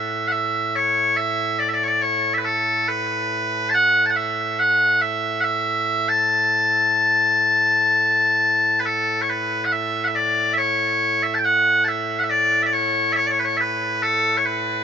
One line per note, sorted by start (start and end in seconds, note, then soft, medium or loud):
0.00 14.84 A2 medium
0.00 0.28 E5 medium
0.28 0.76 E5 medium
0.28 0.32 F#5 medium
0.76 1.17 C#5 medium
1.17 1.59 E5 loud
1.59 1.69 D5 medium
1.69 1.74 E5 medium
1.74 1.83 D5 medium
1.83 1.87 C#5 medium
1.87 2.02 D5 medium
2.02 2.34 C#5 medium
2.34 2.38 E5 medium
2.38 2.45 B4 medium
2.45 2.88 A4 medium
2.88 3.70 B4 medium
3.70 3.74 A5 loud
3.74 4.06 F#5 loud
4.06 4.10 A5 medium
4.10 4.16 F#5 medium
4.16 4.59 E5 medium
4.59 5.02 F#5 loud
5.02 5.41 E5 medium
5.41 6.09 E5 loud
5.41 5.44 F#5 loud
6.09 8.80 A5 loud
8.80 8.86 B4 medium
8.86 9.22 A4 medium
9.22 9.29 C#5 medium
9.29 9.65 B4 medium
9.65 9.72 F#5 medium
9.72 10.04 E5 loud
10.04 10.15 E5 medium
10.04 10.08 F#5 medium
10.15 10.53 D5 medium
10.53 10.58 E5 medium
10.58 11.23 C#5 medium
11.23 11.34 E5 medium
11.34 11.38 A5 medium
11.38 11.44 G5 medium
11.44 11.84 F#5 loud
11.84 12.19 E5 medium
11.84 11.88 A5 medium
12.19 12.23 F#5 medium
12.23 12.30 E5 medium
12.30 12.62 D5 medium
12.62 12.73 D5 medium
12.62 12.66 E5 medium
12.73 13.12 C#5 medium
13.12 13.26 C#5 loud
13.12 13.16 E5 loud
13.26 13.31 D5 medium
13.31 13.39 C#5 medium
13.39 13.44 B4 medium
13.44 13.57 C#5 medium
13.57 14.03 B4 medium
13.57 13.60 E5 medium
14.03 14.37 A4 loud
14.37 14.45 C#5 medium
14.45 14.84 B4 medium